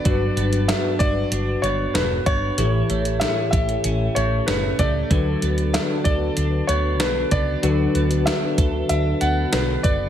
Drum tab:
HH |x-xxx-x-x-x-x-x-|x-xxx-xxx-x-x-x-|x-xxx-x-x-x-x-x-|x-xxx-x-x-x-x-x-|
SD |----o-------o---|----o-------o---|----o-------o---|----o-------o---|
BD |o-----o-------o-|------o-------o-|o-----o-------o-|------o-------o-|